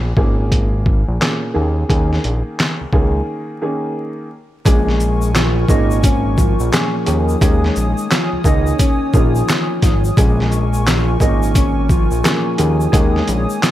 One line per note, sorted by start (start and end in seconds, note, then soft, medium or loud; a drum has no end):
0.00 0.13 A#1 loud
0.00 0.11 A#2 medium
0.00 0.11 A#3 medium
0.00 0.11 C#4 medium
0.00 0.11 G#4 loud
0.17 1.04 G#1 loud
0.17 1.14 A#2 medium
0.17 1.15 A#3 medium
0.17 1.15 C#4 medium
0.17 1.15 G#4 loud
0.17 kick medium
0.52 kick medium
0.52 closed hi-hat loud
0.86 kick medium
1.08 1.19 A#1 medium
1.20 1.53 A#2 medium
1.20 1.52 A#3 medium
1.20 1.53 C#4 medium
1.20 1.53 G#4 medium
1.20 snare loud
1.20 clap loud
1.20 closed hi-hat medium
1.54 1.84 D#2 loud
1.54 1.87 D#3 medium
1.54 1.87 A#3 medium
1.54 1.87 C#4 medium
1.54 1.87 G#4 medium
1.89 2.19 D#2 loud
1.89 2.87 D#3 medium
1.89 2.87 A#3 medium
1.89 2.87 C#4 medium
1.89 2.87 G#4 loud
1.89 kick loud
1.89 closed hi-hat loud
2.13 snare soft
2.24 2.42 A#1 medium
2.24 closed hi-hat soft
2.60 snare loud
2.60 clap medium
2.60 closed hi-hat medium
2.81 2.86 C#2 soft
2.93 3.22 C#2 loud
2.93 3.58 D#3 medium
2.93 3.58 A#3 medium
2.93 3.58 C#4 medium
2.93 3.58 G#4 loud
2.93 kick medium
3.62 4.27 D#3 medium
3.62 4.27 A#3 medium
3.62 4.27 C#4 medium
3.62 4.27 G#4 medium
4.65 5.65 A#1 loud
4.65 5.63 A#2 medium
4.65 5.31 G#3 loud
4.65 5.63 A#3 medium
4.65 5.63 C#4 medium
4.65 5.63 G#4 loud
4.65 5.31 G#4 loud
4.65 7.05 A#4 medium
4.65 7.05 G#5 medium
4.65 7.05 C#6 medium
4.65 kick loud
4.65 closed hi-hat loud
4.65 shaker medium
4.89 snare soft
5.00 shaker medium
5.22 shaker medium
5.34 5.66 F3 medium
5.34 5.65 F4 medium
5.34 snare loud
5.34 clap loud
5.34 closed hi-hat medium
5.34 shaker medium
5.68 6.55 G#1 loud
5.68 6.66 A#2 medium
5.68 6.66 A#3 medium
5.68 6.66 C#4 medium
5.68 6.00 D#4 medium
5.68 6.67 G#4 loud
5.68 6.00 D#5 medium
5.68 kick medium
5.68 shaker medium
5.91 shaker medium
6.04 6.35 C#4 medium
6.04 6.36 C#5 medium
6.04 kick loud
6.04 closed hi-hat loud
6.04 shaker medium
6.38 7.38 F3 medium
6.38 7.38 F4 medium
6.38 kick medium
6.38 shaker medium
6.38 shaker soft
6.60 6.71 A#1 loud
6.60 shaker medium
6.72 7.05 A#2 medium
6.72 7.04 A#3 medium
6.72 7.05 C#4 medium
6.72 7.05 G#4 medium
6.72 snare loud
6.72 clap loud
6.72 closed hi-hat medium
6.72 shaker medium
7.06 7.36 D#2 loud
7.06 7.39 D#3 medium
7.06 7.39 A#3 medium
7.06 7.39 C#4 medium
7.06 7.39 G#4 medium
7.06 10.15 C#5 medium
7.06 10.15 G#5 medium
7.06 10.15 D#6 medium
7.06 closed hi-hat medium
7.06 shaker medium
7.29 shaker medium
7.41 7.70 D#2 loud
7.41 8.38 D#3 medium
7.41 8.07 G#3 loud
7.41 8.39 A#3 medium
7.41 8.39 C#4 medium
7.41 8.39 G#4 loud
7.41 8.07 G#4 loud
7.41 kick loud
7.41 closed hi-hat loud
7.41 shaker medium
7.64 snare soft
7.76 7.94 A#1 medium
7.76 shaker soft
7.76 shaker medium
7.98 shaker medium
8.10 8.42 F3 medium
8.10 8.42 F4 medium
8.10 snare loud
8.10 clap loud
8.10 closed hi-hat medium
8.10 shaker medium
8.33 8.38 C#2 medium
8.44 8.73 C#2 loud
8.44 9.10 D#3 medium
8.44 9.10 A#3 medium
8.44 9.10 C#4 medium
8.44 8.76 D#4 medium
8.44 9.10 G#4 loud
8.44 8.77 D#5 medium
8.44 kick loud
8.44 shaker medium
8.67 shaker medium
8.79 9.11 C#4 medium
8.79 9.11 C#5 medium
8.79 kick loud
8.79 closed hi-hat loud
8.79 shaker medium
9.14 9.43 A#1 loud
9.14 9.79 D#3 medium
9.14 10.14 F3 medium
9.14 9.79 A#3 medium
9.14 9.79 C#4 medium
9.14 10.14 F4 medium
9.14 9.79 G#4 loud
9.14 kick medium
9.14 shaker medium
9.14 shaker soft
9.35 shaker medium
9.49 snare loud
9.49 clap loud
9.49 closed hi-hat medium
9.49 shaker medium
9.82 10.11 G#1 medium
9.82 kick medium
9.82 snare soft
9.82 closed hi-hat medium
9.82 shaker medium
10.05 shaker medium
10.16 11.17 A#1 loud
10.16 11.14 A#2 medium
10.16 10.83 G#3 loud
10.16 11.14 A#3 medium
10.16 11.15 C#4 medium
10.16 10.82 G#4 loud
10.16 11.15 G#4 loud
10.16 12.56 A#4 medium
10.16 13.71 G#5 medium
10.16 12.56 C#6 medium
10.16 kick loud
10.16 closed hi-hat loud
10.16 shaker medium
10.40 snare soft
10.52 shaker soft
10.52 shaker medium
10.73 shaker medium
10.87 11.18 F3 medium
10.87 11.18 F4 medium
10.87 snare loud
10.87 clap loud
10.87 closed hi-hat medium
10.87 shaker medium
11.20 12.07 G#1 loud
11.20 12.18 A#2 medium
11.20 12.18 A#3 medium
11.20 12.18 C#4 medium
11.20 11.52 D#4 medium
11.20 12.18 G#4 loud
11.20 11.52 D#5 medium
11.20 kick loud
11.20 shaker medium
11.43 shaker medium
11.55 11.87 C#4 medium
11.55 11.87 C#5 medium
11.55 kick loud
11.55 closed hi-hat loud
11.55 shaker medium
11.89 12.90 F3 medium
11.89 12.90 F4 medium
11.89 kick medium
11.89 shaker medium
11.89 shaker soft
12.11 12.22 A#1 loud
12.11 shaker medium
12.23 12.56 A#2 medium
12.23 12.56 A#3 medium
12.23 12.56 C#4 medium
12.23 12.57 G#4 medium
12.23 snare loud
12.23 clap loud
12.23 closed hi-hat medium
12.23 shaker medium
12.57 12.88 D#2 loud
12.57 12.91 D#3 medium
12.57 12.91 A#3 medium
12.57 12.91 C#4 medium
12.57 12.91 G#4 medium
12.57 13.71 C#5 medium
12.57 13.71 D#6 medium
12.57 closed hi-hat medium
12.57 shaker medium
12.81 shaker medium
12.92 13.22 D#2 loud
12.92 13.71 D#3 medium
12.92 13.58 G#3 medium
12.92 13.71 A#3 medium
12.92 13.71 C#4 medium
12.92 13.58 G#4 loud
12.92 13.71 G#4 loud
12.92 kick loud
12.92 closed hi-hat medium
12.92 shaker medium
13.16 snare soft
13.28 13.46 A#1 medium
13.28 closed hi-hat soft
13.28 shaker medium
13.50 shaker medium
13.62 13.71 F3 medium
13.62 13.71 F4 medium
13.62 snare loud
13.62 clap loud
13.62 closed hi-hat medium
13.62 shaker medium